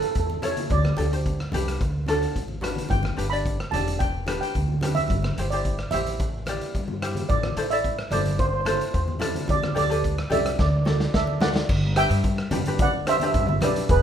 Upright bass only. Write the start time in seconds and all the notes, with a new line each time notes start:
0.15 E2
0.71 D2
0.98 D2
1.53 C2
1.81 D2
2.36 A1
2.91 G1
3.18 G1
3.73 E1
4.55 D2
5.11 G1
5.38 G1
5.93 A1
6.75 G2
7.30 A1
7.56 A1
8.11 G1
8.94 E2
9.49 D2
9.76 D2
10.30 C2
10.59 D2
11.14 D2
11.69 G1
12.10 G2
12.51 G1
13.35 G2
13.47 G1
13.60 B1
13.89 E1